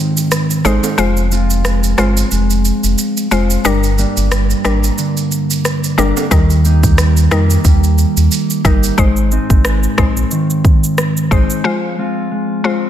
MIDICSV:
0, 0, Header, 1, 6, 480
1, 0, Start_track
1, 0, Tempo, 666667
1, 707, Time_signature, 4, 2, 24, 8
1, 9287, End_track
2, 0, Start_track
2, 0, Title_t, "Synth pluck"
2, 0, Program_c, 0, 84
2, 466, Note_on_c, 0, 56, 79
2, 468, Note_on_c, 0, 63, 71
2, 470, Note_on_c, 0, 72, 89
2, 601, Note_off_c, 0, 56, 0
2, 602, Note_off_c, 0, 63, 0
2, 604, Note_off_c, 0, 72, 0
2, 704, Note_on_c, 0, 56, 97
2, 707, Note_on_c, 0, 65, 87
2, 709, Note_on_c, 0, 72, 103
2, 1152, Note_off_c, 0, 56, 0
2, 1153, Note_off_c, 0, 65, 0
2, 1154, Note_off_c, 0, 72, 0
2, 1424, Note_on_c, 0, 56, 77
2, 1427, Note_on_c, 0, 65, 71
2, 1429, Note_on_c, 0, 72, 85
2, 1560, Note_off_c, 0, 56, 0
2, 1562, Note_off_c, 0, 65, 0
2, 1563, Note_off_c, 0, 72, 0
2, 2386, Note_on_c, 0, 56, 78
2, 2387, Note_on_c, 0, 65, 73
2, 2389, Note_on_c, 0, 72, 92
2, 2521, Note_off_c, 0, 56, 0
2, 2522, Note_off_c, 0, 65, 0
2, 2523, Note_off_c, 0, 72, 0
2, 2626, Note_on_c, 0, 55, 95
2, 2628, Note_on_c, 0, 62, 84
2, 2631, Note_on_c, 0, 70, 105
2, 3073, Note_off_c, 0, 55, 0
2, 3074, Note_off_c, 0, 62, 0
2, 3075, Note_off_c, 0, 70, 0
2, 3345, Note_on_c, 0, 55, 75
2, 3347, Note_on_c, 0, 62, 69
2, 3349, Note_on_c, 0, 70, 82
2, 3481, Note_off_c, 0, 55, 0
2, 3482, Note_off_c, 0, 62, 0
2, 3483, Note_off_c, 0, 70, 0
2, 4304, Note_on_c, 0, 55, 80
2, 4306, Note_on_c, 0, 62, 73
2, 4309, Note_on_c, 0, 70, 85
2, 4440, Note_off_c, 0, 55, 0
2, 4441, Note_off_c, 0, 62, 0
2, 4443, Note_off_c, 0, 70, 0
2, 4544, Note_on_c, 0, 55, 90
2, 4545, Note_on_c, 0, 63, 81
2, 4547, Note_on_c, 0, 70, 104
2, 4991, Note_off_c, 0, 55, 0
2, 4992, Note_off_c, 0, 63, 0
2, 4993, Note_off_c, 0, 70, 0
2, 5265, Note_on_c, 0, 55, 74
2, 5267, Note_on_c, 0, 63, 73
2, 5269, Note_on_c, 0, 70, 86
2, 5401, Note_off_c, 0, 55, 0
2, 5402, Note_off_c, 0, 63, 0
2, 5403, Note_off_c, 0, 70, 0
2, 6225, Note_on_c, 0, 55, 80
2, 6227, Note_on_c, 0, 63, 75
2, 6230, Note_on_c, 0, 70, 86
2, 6361, Note_off_c, 0, 55, 0
2, 6362, Note_off_c, 0, 63, 0
2, 6363, Note_off_c, 0, 70, 0
2, 6464, Note_on_c, 0, 56, 94
2, 6466, Note_on_c, 0, 63, 86
2, 6468, Note_on_c, 0, 72, 106
2, 6911, Note_off_c, 0, 56, 0
2, 6912, Note_off_c, 0, 63, 0
2, 6914, Note_off_c, 0, 72, 0
2, 7184, Note_on_c, 0, 56, 78
2, 7186, Note_on_c, 0, 63, 70
2, 7187, Note_on_c, 0, 72, 86
2, 7320, Note_off_c, 0, 56, 0
2, 7321, Note_off_c, 0, 63, 0
2, 7322, Note_off_c, 0, 72, 0
2, 8144, Note_on_c, 0, 56, 78
2, 8145, Note_on_c, 0, 63, 71
2, 8147, Note_on_c, 0, 72, 86
2, 8280, Note_off_c, 0, 56, 0
2, 8281, Note_off_c, 0, 63, 0
2, 8282, Note_off_c, 0, 72, 0
2, 8382, Note_on_c, 0, 56, 94
2, 8385, Note_on_c, 0, 65, 86
2, 8387, Note_on_c, 0, 72, 98
2, 8831, Note_off_c, 0, 56, 0
2, 8832, Note_off_c, 0, 65, 0
2, 8833, Note_off_c, 0, 72, 0
2, 9102, Note_on_c, 0, 56, 78
2, 9104, Note_on_c, 0, 65, 70
2, 9106, Note_on_c, 0, 72, 84
2, 9239, Note_off_c, 0, 56, 0
2, 9240, Note_off_c, 0, 65, 0
2, 9241, Note_off_c, 0, 72, 0
2, 9287, End_track
3, 0, Start_track
3, 0, Title_t, "Clean electric guitar"
3, 0, Program_c, 1, 27
3, 0, Note_on_c, 1, 44, 83
3, 0, Note_on_c, 1, 51, 69
3, 0, Note_on_c, 1, 56, 67
3, 0, Note_on_c, 1, 60, 64
3, 0, Note_on_c, 1, 63, 70
3, 464, Note_off_c, 1, 56, 0
3, 467, Note_on_c, 1, 56, 62
3, 468, Note_off_c, 1, 63, 0
3, 469, Note_off_c, 1, 60, 0
3, 472, Note_on_c, 1, 60, 64
3, 476, Note_on_c, 1, 63, 71
3, 704, Note_off_c, 1, 51, 0
3, 707, Note_off_c, 1, 44, 0
3, 707, Note_on_c, 1, 53, 83
3, 765, Note_off_c, 1, 63, 0
3, 944, Note_off_c, 1, 56, 0
3, 946, Note_on_c, 1, 56, 60
3, 948, Note_off_c, 1, 60, 0
3, 951, Note_on_c, 1, 60, 63
3, 955, Note_on_c, 1, 65, 66
3, 1178, Note_off_c, 1, 56, 0
3, 1186, Note_on_c, 1, 56, 65
3, 1418, Note_off_c, 1, 60, 0
3, 1427, Note_on_c, 1, 60, 63
3, 1658, Note_off_c, 1, 56, 0
3, 1667, Note_on_c, 1, 56, 73
3, 2379, Note_off_c, 1, 56, 0
3, 2383, Note_off_c, 1, 60, 0
3, 2387, Note_off_c, 1, 65, 0
3, 2388, Note_on_c, 1, 56, 63
3, 2392, Note_on_c, 1, 60, 61
3, 2396, Note_on_c, 1, 65, 71
3, 2627, Note_off_c, 1, 53, 0
3, 2627, Note_on_c, 1, 43, 84
3, 2681, Note_off_c, 1, 56, 0
3, 2683, Note_off_c, 1, 60, 0
3, 2685, Note_off_c, 1, 65, 0
3, 2868, Note_on_c, 1, 55, 63
3, 2872, Note_on_c, 1, 58, 62
3, 2877, Note_on_c, 1, 62, 68
3, 3105, Note_off_c, 1, 55, 0
3, 3108, Note_on_c, 1, 55, 64
3, 3345, Note_off_c, 1, 58, 0
3, 3348, Note_on_c, 1, 58, 63
3, 3587, Note_on_c, 1, 50, 69
3, 4305, Note_off_c, 1, 55, 0
3, 4308, Note_off_c, 1, 62, 0
3, 4308, Note_on_c, 1, 55, 62
3, 4310, Note_off_c, 1, 58, 0
3, 4313, Note_on_c, 1, 58, 62
3, 4317, Note_on_c, 1, 62, 65
3, 4545, Note_off_c, 1, 50, 0
3, 4547, Note_off_c, 1, 43, 0
3, 4548, Note_on_c, 1, 51, 82
3, 4605, Note_off_c, 1, 62, 0
3, 4785, Note_off_c, 1, 55, 0
3, 4788, Note_on_c, 1, 55, 64
3, 4789, Note_off_c, 1, 58, 0
3, 4792, Note_on_c, 1, 58, 62
3, 4796, Note_on_c, 1, 63, 69
3, 5019, Note_off_c, 1, 55, 0
3, 5028, Note_on_c, 1, 55, 65
3, 5259, Note_off_c, 1, 58, 0
3, 5268, Note_on_c, 1, 58, 66
3, 5499, Note_off_c, 1, 55, 0
3, 5508, Note_on_c, 1, 55, 71
3, 6218, Note_off_c, 1, 55, 0
3, 6223, Note_off_c, 1, 58, 0
3, 6227, Note_on_c, 1, 55, 60
3, 6231, Note_on_c, 1, 58, 59
3, 6233, Note_off_c, 1, 63, 0
3, 6235, Note_on_c, 1, 63, 67
3, 6467, Note_on_c, 1, 44, 86
3, 6521, Note_off_c, 1, 55, 0
3, 6523, Note_off_c, 1, 58, 0
3, 6707, Note_on_c, 1, 56, 63
3, 6711, Note_on_c, 1, 60, 61
3, 6712, Note_off_c, 1, 63, 0
3, 6715, Note_on_c, 1, 63, 69
3, 6944, Note_off_c, 1, 56, 0
3, 6947, Note_on_c, 1, 56, 64
3, 7068, Note_off_c, 1, 51, 0
3, 7185, Note_off_c, 1, 60, 0
3, 7188, Note_on_c, 1, 60, 65
3, 7427, Note_on_c, 1, 51, 75
3, 8144, Note_off_c, 1, 56, 0
3, 8147, Note_on_c, 1, 56, 61
3, 8148, Note_off_c, 1, 63, 0
3, 8149, Note_off_c, 1, 60, 0
3, 8152, Note_on_c, 1, 60, 62
3, 8156, Note_on_c, 1, 63, 69
3, 8385, Note_off_c, 1, 51, 0
3, 8387, Note_off_c, 1, 44, 0
3, 8388, Note_on_c, 1, 53, 90
3, 8445, Note_off_c, 1, 63, 0
3, 8625, Note_off_c, 1, 56, 0
3, 8628, Note_on_c, 1, 56, 66
3, 8629, Note_off_c, 1, 60, 0
3, 8632, Note_on_c, 1, 60, 60
3, 8636, Note_on_c, 1, 65, 71
3, 8858, Note_off_c, 1, 56, 0
3, 8867, Note_on_c, 1, 56, 67
3, 9098, Note_off_c, 1, 60, 0
3, 9106, Note_on_c, 1, 60, 64
3, 9287, Note_off_c, 1, 53, 0
3, 9287, Note_off_c, 1, 56, 0
3, 9287, Note_off_c, 1, 60, 0
3, 9287, Note_off_c, 1, 65, 0
3, 9287, End_track
4, 0, Start_track
4, 0, Title_t, "Sub bass"
4, 0, Program_c, 2, 38
4, 467, Note_on_c, 2, 32, 90
4, 570, Note_off_c, 2, 32, 0
4, 707, Note_on_c, 2, 29, 100
4, 1398, Note_off_c, 2, 29, 0
4, 1427, Note_on_c, 2, 31, 88
4, 1612, Note_off_c, 2, 31, 0
4, 1667, Note_on_c, 2, 29, 105
4, 1956, Note_off_c, 2, 29, 0
4, 2042, Note_on_c, 2, 29, 99
4, 2123, Note_off_c, 2, 29, 0
4, 2387, Note_on_c, 2, 29, 94
4, 2572, Note_off_c, 2, 29, 0
4, 2629, Note_on_c, 2, 31, 104
4, 2917, Note_off_c, 2, 31, 0
4, 3002, Note_on_c, 2, 31, 90
4, 3268, Note_off_c, 2, 31, 0
4, 3347, Note_on_c, 2, 32, 84
4, 3532, Note_off_c, 2, 32, 0
4, 4307, Note_on_c, 2, 31, 92
4, 4411, Note_off_c, 2, 31, 0
4, 4546, Note_on_c, 2, 39, 116
4, 5238, Note_off_c, 2, 39, 0
4, 5267, Note_on_c, 2, 41, 95
4, 5452, Note_off_c, 2, 41, 0
4, 5507, Note_on_c, 2, 39, 107
4, 5795, Note_off_c, 2, 39, 0
4, 5881, Note_on_c, 2, 39, 95
4, 5963, Note_off_c, 2, 39, 0
4, 6227, Note_on_c, 2, 31, 87
4, 6412, Note_off_c, 2, 31, 0
4, 6466, Note_on_c, 2, 32, 115
4, 6755, Note_off_c, 2, 32, 0
4, 6841, Note_on_c, 2, 32, 88
4, 7107, Note_off_c, 2, 32, 0
4, 7187, Note_on_c, 2, 34, 83
4, 7372, Note_off_c, 2, 34, 0
4, 8147, Note_on_c, 2, 32, 91
4, 8250, Note_off_c, 2, 32, 0
4, 9287, End_track
5, 0, Start_track
5, 0, Title_t, "Downlifter"
5, 0, Program_c, 3, 103
5, 0, Note_on_c, 3, 60, 88
5, 707, Note_off_c, 3, 60, 0
5, 9287, End_track
6, 0, Start_track
6, 0, Title_t, "Drums"
6, 123, Note_on_c, 9, 82, 89
6, 195, Note_off_c, 9, 82, 0
6, 227, Note_on_c, 9, 82, 79
6, 228, Note_on_c, 9, 37, 92
6, 299, Note_off_c, 9, 82, 0
6, 300, Note_off_c, 9, 37, 0
6, 362, Note_on_c, 9, 82, 51
6, 363, Note_off_c, 9, 82, 0
6, 363, Note_on_c, 9, 82, 58
6, 435, Note_off_c, 9, 82, 0
6, 467, Note_on_c, 9, 65, 73
6, 467, Note_on_c, 9, 82, 53
6, 469, Note_off_c, 9, 82, 0
6, 469, Note_on_c, 9, 82, 55
6, 539, Note_off_c, 9, 65, 0
6, 541, Note_off_c, 9, 82, 0
6, 601, Note_on_c, 9, 65, 71
6, 601, Note_on_c, 9, 82, 71
6, 602, Note_off_c, 9, 82, 0
6, 602, Note_on_c, 9, 82, 74
6, 673, Note_off_c, 9, 65, 0
6, 674, Note_off_c, 9, 82, 0
6, 706, Note_on_c, 9, 82, 72
6, 707, Note_off_c, 9, 82, 0
6, 707, Note_on_c, 9, 82, 81
6, 779, Note_off_c, 9, 82, 0
6, 840, Note_on_c, 9, 82, 51
6, 842, Note_off_c, 9, 82, 0
6, 842, Note_on_c, 9, 82, 44
6, 914, Note_off_c, 9, 82, 0
6, 946, Note_on_c, 9, 82, 51
6, 949, Note_off_c, 9, 82, 0
6, 949, Note_on_c, 9, 82, 52
6, 1021, Note_off_c, 9, 82, 0
6, 1082, Note_on_c, 9, 82, 70
6, 1154, Note_off_c, 9, 82, 0
6, 1187, Note_on_c, 9, 37, 95
6, 1187, Note_on_c, 9, 82, 67
6, 1259, Note_off_c, 9, 37, 0
6, 1259, Note_off_c, 9, 82, 0
6, 1321, Note_on_c, 9, 82, 52
6, 1393, Note_off_c, 9, 82, 0
6, 1425, Note_on_c, 9, 82, 54
6, 1426, Note_off_c, 9, 82, 0
6, 1426, Note_on_c, 9, 82, 47
6, 1427, Note_on_c, 9, 37, 90
6, 1498, Note_off_c, 9, 82, 0
6, 1499, Note_off_c, 9, 37, 0
6, 1563, Note_on_c, 9, 82, 77
6, 1635, Note_off_c, 9, 82, 0
6, 1665, Note_on_c, 9, 82, 72
6, 1668, Note_off_c, 9, 82, 0
6, 1668, Note_on_c, 9, 82, 67
6, 1740, Note_off_c, 9, 82, 0
6, 1801, Note_on_c, 9, 82, 47
6, 1802, Note_off_c, 9, 82, 0
6, 1802, Note_on_c, 9, 82, 58
6, 1874, Note_off_c, 9, 82, 0
6, 1906, Note_on_c, 9, 82, 52
6, 1907, Note_off_c, 9, 82, 0
6, 1907, Note_on_c, 9, 82, 55
6, 1979, Note_off_c, 9, 82, 0
6, 2042, Note_on_c, 9, 82, 66
6, 2043, Note_off_c, 9, 82, 0
6, 2043, Note_on_c, 9, 82, 92
6, 2115, Note_off_c, 9, 82, 0
6, 2146, Note_on_c, 9, 82, 78
6, 2218, Note_off_c, 9, 82, 0
6, 2282, Note_on_c, 9, 82, 49
6, 2283, Note_off_c, 9, 82, 0
6, 2283, Note_on_c, 9, 82, 58
6, 2355, Note_off_c, 9, 82, 0
6, 2386, Note_on_c, 9, 82, 52
6, 2388, Note_off_c, 9, 82, 0
6, 2388, Note_on_c, 9, 82, 60
6, 2460, Note_off_c, 9, 82, 0
6, 2522, Note_on_c, 9, 82, 73
6, 2594, Note_off_c, 9, 82, 0
6, 2626, Note_on_c, 9, 82, 69
6, 2627, Note_off_c, 9, 82, 0
6, 2627, Note_on_c, 9, 82, 82
6, 2699, Note_off_c, 9, 82, 0
6, 2760, Note_on_c, 9, 82, 54
6, 2761, Note_off_c, 9, 82, 0
6, 2761, Note_on_c, 9, 82, 45
6, 2833, Note_off_c, 9, 82, 0
6, 2867, Note_on_c, 9, 82, 49
6, 2868, Note_off_c, 9, 82, 0
6, 2868, Note_on_c, 9, 82, 53
6, 2940, Note_off_c, 9, 82, 0
6, 3002, Note_on_c, 9, 82, 69
6, 3004, Note_off_c, 9, 82, 0
6, 3004, Note_on_c, 9, 82, 72
6, 3076, Note_off_c, 9, 82, 0
6, 3107, Note_on_c, 9, 82, 73
6, 3108, Note_off_c, 9, 82, 0
6, 3108, Note_on_c, 9, 37, 102
6, 3108, Note_on_c, 9, 82, 67
6, 3180, Note_off_c, 9, 37, 0
6, 3180, Note_off_c, 9, 82, 0
6, 3242, Note_on_c, 9, 82, 50
6, 3314, Note_off_c, 9, 82, 0
6, 3347, Note_on_c, 9, 82, 54
6, 3348, Note_off_c, 9, 82, 0
6, 3348, Note_on_c, 9, 82, 47
6, 3349, Note_on_c, 9, 37, 92
6, 3420, Note_off_c, 9, 82, 0
6, 3421, Note_off_c, 9, 37, 0
6, 3481, Note_on_c, 9, 82, 80
6, 3483, Note_off_c, 9, 82, 0
6, 3483, Note_on_c, 9, 82, 76
6, 3555, Note_off_c, 9, 82, 0
6, 3586, Note_on_c, 9, 82, 74
6, 3588, Note_off_c, 9, 82, 0
6, 3588, Note_on_c, 9, 82, 69
6, 3660, Note_off_c, 9, 82, 0
6, 3722, Note_on_c, 9, 82, 47
6, 3723, Note_off_c, 9, 82, 0
6, 3723, Note_on_c, 9, 82, 56
6, 3795, Note_off_c, 9, 82, 0
6, 3826, Note_on_c, 9, 82, 52
6, 3828, Note_off_c, 9, 82, 0
6, 3828, Note_on_c, 9, 82, 54
6, 3900, Note_off_c, 9, 82, 0
6, 3963, Note_on_c, 9, 82, 68
6, 3964, Note_off_c, 9, 82, 0
6, 3964, Note_on_c, 9, 82, 90
6, 4036, Note_off_c, 9, 82, 0
6, 4067, Note_on_c, 9, 82, 67
6, 4069, Note_on_c, 9, 37, 91
6, 4139, Note_off_c, 9, 82, 0
6, 4141, Note_off_c, 9, 37, 0
6, 4203, Note_on_c, 9, 82, 56
6, 4275, Note_off_c, 9, 82, 0
6, 4307, Note_on_c, 9, 65, 69
6, 4307, Note_on_c, 9, 82, 54
6, 4308, Note_off_c, 9, 82, 0
6, 4308, Note_on_c, 9, 82, 59
6, 4379, Note_off_c, 9, 65, 0
6, 4380, Note_off_c, 9, 82, 0
6, 4441, Note_on_c, 9, 65, 73
6, 4441, Note_on_c, 9, 82, 72
6, 4513, Note_off_c, 9, 65, 0
6, 4513, Note_off_c, 9, 82, 0
6, 4547, Note_on_c, 9, 36, 107
6, 4547, Note_on_c, 9, 82, 81
6, 4619, Note_off_c, 9, 36, 0
6, 4619, Note_off_c, 9, 82, 0
6, 4680, Note_on_c, 9, 82, 53
6, 4681, Note_off_c, 9, 82, 0
6, 4681, Note_on_c, 9, 82, 47
6, 4753, Note_off_c, 9, 82, 0
6, 4786, Note_on_c, 9, 82, 52
6, 4788, Note_off_c, 9, 82, 0
6, 4788, Note_on_c, 9, 82, 52
6, 4860, Note_off_c, 9, 82, 0
6, 4921, Note_on_c, 9, 36, 91
6, 4921, Note_on_c, 9, 82, 74
6, 4993, Note_off_c, 9, 36, 0
6, 4993, Note_off_c, 9, 82, 0
6, 5026, Note_on_c, 9, 37, 103
6, 5027, Note_on_c, 9, 82, 77
6, 5098, Note_off_c, 9, 37, 0
6, 5099, Note_off_c, 9, 82, 0
6, 5160, Note_on_c, 9, 82, 59
6, 5232, Note_off_c, 9, 82, 0
6, 5266, Note_on_c, 9, 82, 48
6, 5267, Note_on_c, 9, 37, 91
6, 5338, Note_off_c, 9, 82, 0
6, 5339, Note_off_c, 9, 37, 0
6, 5401, Note_on_c, 9, 82, 79
6, 5402, Note_off_c, 9, 82, 0
6, 5402, Note_on_c, 9, 82, 76
6, 5474, Note_off_c, 9, 82, 0
6, 5504, Note_on_c, 9, 82, 72
6, 5506, Note_on_c, 9, 36, 82
6, 5507, Note_off_c, 9, 82, 0
6, 5507, Note_on_c, 9, 82, 66
6, 5578, Note_off_c, 9, 36, 0
6, 5579, Note_off_c, 9, 82, 0
6, 5642, Note_on_c, 9, 82, 55
6, 5714, Note_off_c, 9, 82, 0
6, 5746, Note_on_c, 9, 82, 50
6, 5818, Note_off_c, 9, 82, 0
6, 5883, Note_on_c, 9, 82, 61
6, 5955, Note_off_c, 9, 82, 0
6, 5985, Note_on_c, 9, 82, 64
6, 5987, Note_off_c, 9, 82, 0
6, 5987, Note_on_c, 9, 82, 79
6, 6059, Note_off_c, 9, 82, 0
6, 6121, Note_on_c, 9, 82, 56
6, 6123, Note_off_c, 9, 82, 0
6, 6123, Note_on_c, 9, 82, 51
6, 6195, Note_off_c, 9, 82, 0
6, 6227, Note_on_c, 9, 36, 96
6, 6227, Note_on_c, 9, 82, 57
6, 6228, Note_off_c, 9, 82, 0
6, 6228, Note_on_c, 9, 82, 53
6, 6299, Note_off_c, 9, 36, 0
6, 6300, Note_off_c, 9, 82, 0
6, 6360, Note_on_c, 9, 82, 72
6, 6361, Note_off_c, 9, 82, 0
6, 6361, Note_on_c, 9, 82, 70
6, 6433, Note_off_c, 9, 82, 0
6, 6466, Note_on_c, 9, 36, 111
6, 6466, Note_on_c, 9, 82, 83
6, 6538, Note_off_c, 9, 36, 0
6, 6538, Note_off_c, 9, 82, 0
6, 6599, Note_on_c, 9, 82, 51
6, 6671, Note_off_c, 9, 82, 0
6, 6706, Note_on_c, 9, 82, 50
6, 6778, Note_off_c, 9, 82, 0
6, 6841, Note_on_c, 9, 36, 96
6, 6841, Note_on_c, 9, 82, 74
6, 6913, Note_off_c, 9, 36, 0
6, 6913, Note_off_c, 9, 82, 0
6, 6945, Note_on_c, 9, 37, 98
6, 6946, Note_on_c, 9, 82, 68
6, 7017, Note_off_c, 9, 37, 0
6, 7018, Note_off_c, 9, 82, 0
6, 7079, Note_on_c, 9, 82, 51
6, 7151, Note_off_c, 9, 82, 0
6, 7185, Note_on_c, 9, 82, 46
6, 7186, Note_on_c, 9, 37, 92
6, 7187, Note_on_c, 9, 36, 93
6, 7257, Note_off_c, 9, 82, 0
6, 7258, Note_off_c, 9, 37, 0
6, 7259, Note_off_c, 9, 36, 0
6, 7320, Note_on_c, 9, 82, 76
6, 7392, Note_off_c, 9, 82, 0
6, 7423, Note_on_c, 9, 82, 73
6, 7495, Note_off_c, 9, 82, 0
6, 7561, Note_on_c, 9, 82, 59
6, 7633, Note_off_c, 9, 82, 0
6, 7665, Note_on_c, 9, 36, 94
6, 7666, Note_on_c, 9, 82, 53
6, 7737, Note_off_c, 9, 36, 0
6, 7738, Note_off_c, 9, 82, 0
6, 7802, Note_on_c, 9, 82, 88
6, 7874, Note_off_c, 9, 82, 0
6, 7905, Note_on_c, 9, 82, 68
6, 7906, Note_on_c, 9, 37, 91
6, 7977, Note_off_c, 9, 82, 0
6, 7978, Note_off_c, 9, 37, 0
6, 8042, Note_on_c, 9, 82, 60
6, 8114, Note_off_c, 9, 82, 0
6, 8147, Note_on_c, 9, 36, 93
6, 8148, Note_on_c, 9, 82, 58
6, 8219, Note_off_c, 9, 36, 0
6, 8220, Note_off_c, 9, 82, 0
6, 8280, Note_on_c, 9, 82, 74
6, 8352, Note_off_c, 9, 82, 0
6, 9287, End_track
0, 0, End_of_file